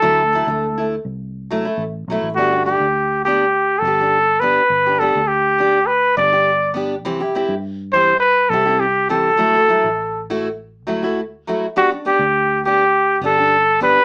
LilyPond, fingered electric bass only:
\new Staff \with { instrumentName = "Fingered electric bass" } { \clef bass \time 4/4 \key g \major \tempo 4 = 102 d,8. d,4 c,4~ c,16 a,,8 b,,16 a,,16 | g,,8. d,4.~ d,16 g,,4. | g,,8. d,4.~ d,16 g,,4. | c,8. g,4.~ g,16 c,4. |
d,8. a,,4.~ a,,16 d,4. | g,,8. d,4.~ d,16 g,,4. | }